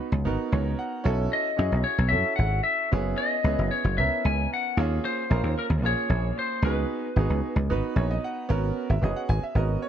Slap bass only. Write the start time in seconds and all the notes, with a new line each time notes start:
0.12 C#2
0.25 G#1
0.52 C#2
1.05 B1
1.59 F#2
1.72 B1
1.98 B1
2.12 F#2
2.39 G#1
2.92 F#1
3.44 C#2
3.59 F#1
3.84 F#1
3.98 C#2
4.25 C#2
4.77 D#2
5.31 A#1
5.43 D#2
5.70 D#2
5.82 A#1
6.09 A#1
6.62 C#2
7.16 G#1
7.30 C#2
7.56 C#2
7.70 G#1
7.96 A#1
8.50 G#1
8.89 G#1
9.02 F#1
9.29 G#1
9.43 muted slap bass stroke
9.55 G#1